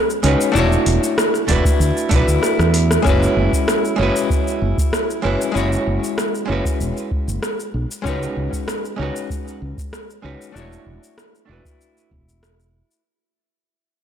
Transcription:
Already playing: G#3 C#4 D#4 F#4 B4
0.10 shaker
0.23 C#2 G#3 C#4 D#4 F#4 B4, open hi-hat
0.41 shaker
0.52 E1 A3 D4 E4
0.56 F#4 C#5, shaker
0.72 shaker
0.86 E1, open hi-hat
1.04 shaker
1.18 cross-stick, shaker
1.34 cross-stick, shaker
1.48 E1 A3 D4 E4 F#4 B4, kick, open hi-hat
1.65 kick, shaker
1.80 D2, shaker
1.97 shaker
2.09 B1 A3 D4 E4, kick, open hi-hat
2.14 F#4 B4
2.28 D2, shaker
2.43 cross-stick, shaker
2.59 E2, cross-stick, shaker
2.74 open hi-hat
2.91 cross-stick, shaker
3.02 F#1 G#3 C#4 E4, kick, shaker
3.07 F#4 B4
3.23 shaker
3.36 F#1
3.53 kick, shaker
3.68 cross-stick, shaker
3.85 shaker
3.96 F#1 G#3 C#4 E4
4.01 F#4 B4
4.16 shaker
4.30 kick, shaker
4.48 shaker
4.62 F#1
4.78 kick, shaker
4.93 cross-stick, shaker
5.10 shaker
5.22 F#1 G#3 C#4 E4 F#4 B4
5.42 shaker
5.52 F#1 G#3 C#4 E4
5.56 F#4 C#5, shaker
5.73 shaker
5.87 F#1
6.04 shaker
6.18 cross-stick, shaker
6.35 shaker
6.45 F#1 G#3 C#4 E4
6.50 F#4 B4
6.65 kick, shaker
6.80 E1, shaker
6.97 shaker
7.11 kick
7.27 F#1, shaker
7.43 cross-stick, shaker
7.60 shaker
7.74 B1
7.91 shaker
8.02 C#2 G#3 C#4 D#4, kick
8.06 F#4 B4, shaker
8.23 shaker
8.37 C#2
8.53 kick, shaker
8.68 cross-stick, shaker
8.85 shaker
8.96 C#2 G#3 C#4 D#4
9.01 F#4 B4
9.16 shaker
9.30 kick, shaker
9.48 shaker
9.62 C#2
9.78 kick, shaker
9.93 cross-stick, shaker
10.10 shaker
10.22 C#2 G#3 C#4 D#4 F#4 B4
10.42 shaker
10.52 E1 A3 D4 E4
10.56 F#4 C#5, shaker
10.73 shaker
10.86 E1
11.04 shaker
11.18 cross-stick, shaker
11.35 shaker
11.45 E1 A3 D4 E4
11.51 F#4 B4
11.65 kick, shaker
11.81 shaker
11.97 shaker
12.11 E1, kick
12.29 shaker
12.43 cross-stick, shaker
12.60 shaker
12.91 shaker

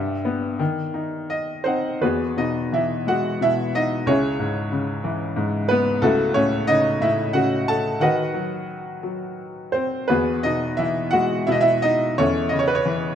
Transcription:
Already playing: G2 G4 E5
0.25 B3
0.59 D#3
0.94 D#4
1.30 D#5
1.64 C4 D#4 C5 F#5
2.01 E2 B3 F#4 G#4 B4
2.37 B2 D#4 D#5
2.72 E3 E4 E5
3.06 G#3 F#4 F#5
3.41 B2 E4 E5
3.75 D#4 D#5
4.06 C#2 C#4 E4 G#4 C#5
4.40 G#2
4.72 C#3
5.04 E3
5.36 G#2
5.68 B3 B4
6.02 C#2 A3 E4 F#4 A4
6.34 A2 C#4 C#5
6.67 C#3 D#4 D#5
7.01 A2 E4 E5
7.33 C#3 F#4 F#5
7.68 A4 A5
8.00 D#3 F#4 B4 D#5 F#5
8.34 F#3
9.03 F#3
9.72 C4 C5
10.08 E2 B3 F#4 G#4 B4
10.43 B2 D#4 D#5
10.77 E3 E4 E5
11.11 G#3 F#4 F#5
11.47 B2 E4 E5
11.52 D#5
11.61 E4 E5
11.82 D#4 D#5
12.18 E2 C#4 E4 A4 C#5
12.49 C#3 D#5
12.59 C#5
12.68 B4
12.75 C#5
12.85 E3

